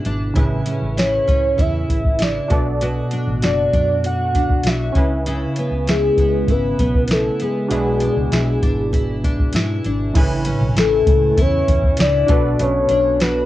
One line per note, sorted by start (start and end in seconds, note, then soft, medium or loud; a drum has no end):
0.00 0.35 B2 medium
0.00 0.31 D4 soft
0.00 0.36 E4 medium
0.00 0.32 F#4 medium
0.00 0.33 G#4 soft
0.00 0.34 B4 medium
0.05 0.30 G#1 medium
0.05 0.42 D4 medium
0.05 closed hi-hat medium
0.34 0.60 A1 medium
0.34 2.49 A2 medium
0.34 2.45 C#3 medium
0.34 2.46 E4 medium
0.34 0.96 E4 medium
0.34 2.47 G#4 medium
0.34 kick loud
0.34 closed hi-hat medium
0.39 2.48 B4 medium
0.66 1.26 C#4 medium
0.66 closed hi-hat medium
0.82 1.19 A1 medium
0.97 1.56 E4 medium
0.97 1.62 C#5 medium
0.97 snare loud
0.97 closed hi-hat medium
1.27 1.52 C#2 medium
1.27 1.89 C#4 medium
1.27 kick medium
1.27 closed hi-hat medium
1.58 1.83 E2 medium
1.58 2.19 E4 medium
1.58 2.23 E5 loud
1.58 kick medium
1.58 closed hi-hat medium
1.89 2.38 A1 medium
1.89 kick medium
1.89 closed hi-hat medium
2.05 kick medium
2.19 2.56 E4 medium
2.19 2.82 D5 medium
2.19 snare loud
2.19 closed hi-hat medium
2.48 3.00 B1 medium
2.48 2.81 B2 medium
2.48 4.90 D4 medium
2.48 4.91 F#4 medium
2.48 4.92 A4 medium
2.48 kick medium
2.48 closed hi-hat medium
2.53 4.93 D5 medium
2.81 5.02 B2 medium
2.81 3.41 F#4 medium
2.81 closed hi-hat medium
3.11 3.72 D4 medium
3.11 closed hi-hat medium
3.27 3.39 A1 medium
3.42 3.67 F#1 medium
3.42 4.03 F#4 medium
3.42 4.00 D5 medium
3.42 snare medium
3.42 closed hi-hat medium
3.73 4.61 F#2 medium
3.73 4.34 D4 medium
3.73 kick medium
3.73 closed hi-hat medium
4.04 4.65 F#4 medium
4.04 4.69 F#5 loud
4.04 closed hi-hat medium
4.35 5.02 D4 medium
4.35 kick medium
4.35 closed hi-hat medium
4.50 kick medium
4.63 4.89 B1 medium
4.63 5.02 F#4 medium
4.63 snare loud
4.63 closed hi-hat medium
4.68 5.27 E5 medium
4.93 5.44 C#2 medium
4.93 5.26 C#3 medium
4.93 7.35 C#4 medium
4.93 7.36 E4 soft
4.93 7.36 G#5 medium
4.93 kick loud
4.93 closed hi-hat medium
4.98 7.37 B4 medium
5.26 7.71 C#3 medium
5.26 5.88 E4 medium
5.26 closed hi-hat medium
5.56 6.19 B3 medium
5.56 closed hi-hat medium
5.71 6.08 C#2 medium
5.88 6.49 E4 medium
5.88 6.52 G#4 medium
5.88 snare loud
5.88 closed hi-hat medium
6.17 6.42 C#2 medium
6.17 6.80 B3 medium
6.17 kick medium
6.17 closed hi-hat medium
6.48 6.73 G#1 medium
6.48 7.10 E4 medium
6.48 7.13 B4 loud
6.48 kick medium
6.48 closed hi-hat medium
6.79 7.28 B1 medium
6.79 7.41 B3 soft
6.79 kick medium
6.79 closed hi-hat medium
6.94 kick medium
7.08 7.71 E4 medium
7.08 snare loud
7.08 closed hi-hat medium
7.12 7.44 A4 loud
7.40 8.01 B3 medium
7.40 9.55 G#4 medium
7.40 closed hi-hat medium
7.68 8.07 B1 medium
7.68 10.15 B2 medium
7.68 10.10 D4 medium
7.68 8.32 E4 medium
7.68 10.11 F#4 soft
7.68 10.12 G#4 medium
7.68 closed hi-hat medium
7.73 10.12 B4 medium
8.00 8.61 D4 medium
8.00 closed hi-hat medium
8.17 8.29 C#2 medium
8.32 8.56 B1 medium
8.32 8.92 E4 medium
8.32 snare loud
8.32 closed hi-hat medium
8.62 9.50 G#1 medium
8.62 9.23 D4 medium
8.62 kick medium
8.62 closed hi-hat medium
8.93 9.54 E4 medium
8.93 kick medium
8.93 closed hi-hat medium
9.24 9.85 D4 medium
9.24 kick medium
9.24 closed hi-hat medium
9.39 kick medium
9.53 9.79 G#2 medium
9.53 10.76 E4 medium
9.53 snare loud
9.53 closed hi-hat medium
9.84 10.10 G#1 medium
9.84 10.22 D4 medium
9.84 closed hi-hat medium
10.14 10.52 A1 medium
10.14 12.28 A2 medium
10.14 12.24 C#3 medium
10.14 12.25 E4 medium
10.14 12.26 G#5 medium
10.14 kick loud
10.14 closed hi-hat medium
10.14 crash loud
10.18 12.27 B4 medium
10.45 11.68 C#4 medium
10.45 closed hi-hat medium
10.61 10.73 B1 medium
10.76 11.00 A1 medium
10.76 11.37 E4 medium
10.76 11.42 A4 medium
10.76 snare loud
10.76 closed hi-hat medium
11.07 11.31 C#2 medium
11.07 kick medium
11.07 closed hi-hat medium
11.37 11.62 E2 medium
11.37 11.98 E4 medium
11.37 kick medium
11.37 closed hi-hat medium
11.41 12.02 C#5 loud
11.68 11.93 E2 medium
11.68 kick medium
11.68 closed hi-hat medium
11.83 kick medium
11.97 12.23 C#2 medium
11.97 12.35 E4 medium
11.97 12.63 D5 loud
11.97 snare loud
11.97 closed hi-hat medium
12.26 12.53 B1 loud
12.26 12.58 B2 medium
12.26 13.46 D4 medium
12.26 13.46 F#4 medium
12.26 13.46 A4 medium
12.26 kick loud
12.26 closed hi-hat medium
12.31 13.46 B4 medium
12.59 12.84 B1 medium
12.59 13.46 B2 medium
12.59 13.23 C#5 loud
12.59 closed hi-hat medium
12.89 13.46 B1 loud
12.89 13.46 D4 medium
12.89 closed hi-hat medium
13.20 13.46 F#4 medium
13.20 13.46 B4 loud
13.20 snare loud
13.20 closed hi-hat medium